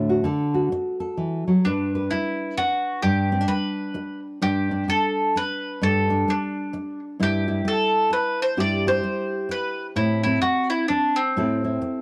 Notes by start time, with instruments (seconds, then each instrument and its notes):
Already playing: nylon-string guitar A2 D3 A3 A4
0.09 nylon-string guitar F#4
0.24 nylon-string guitar D3 A4
0.54 nylon-string guitar F#4
0.72 muted nylon-string guitar stroke
1.00 nylon-string guitar A4
1.17 nylon-string guitar E3
1.48 nylon-string guitar F#3
1.65 nylon-string guitar G2 D4 B4, mandolin D4
1.95 nylon-string guitar B4
2.11 mandolin E4, muted nylon-string guitar stroke
2.58 mandolin F#4, muted nylon-string guitar stroke
3.02 nylon-string guitar G2 D4, mandolin G4
3.32 nylon-string guitar C4
3.41 nylon-string guitar D4
3.48 mandolin B4, muted nylon-string guitar stroke
3.94 muted nylon-string guitar stroke
4.42 nylon-string guitar G2 D4, mandolin G4
4.71 nylon-string guitar D4
4.88 mandolin A4, muted nylon-string guitar stroke
5.36 mandolin B4, muted nylon-string guitar stroke
5.81 nylon-string guitar G2 D4, mandolin A4
6.10 nylon-string guitar D4
6.28 mandolin D4, muted nylon-string guitar stroke
6.73 muted nylon-string guitar stroke
7.20 nylon-string guitar G2 E4, mandolin G4
7.48 nylon-string guitar E4
7.65 mandolin A4, muted nylon-string guitar stroke
8.10 mandolin B4, muted nylon-string guitar stroke
8.42 mandolin C5
8.57 nylon-string guitar G2 E4 G4, mandolin D5
8.87 nylon-string guitar G4, mandolin C5
9.03 muted nylon-string guitar stroke
9.49 mandolin B4, muted nylon-string guitar stroke
9.96 nylon-string guitar A2 C4, mandolin E4
10.23 nylon-string guitar C4, mandolin E4
10.42 mandolin F#4, muted nylon-string guitar stroke
10.70 mandolin E4
10.88 mandolin D4, muted nylon-string guitar stroke
11.16 mandolin C4
11.36 nylon-string guitar A2 C4 E4 A4
11.64 nylon-string guitar E4
11.82 muted nylon-string guitar stroke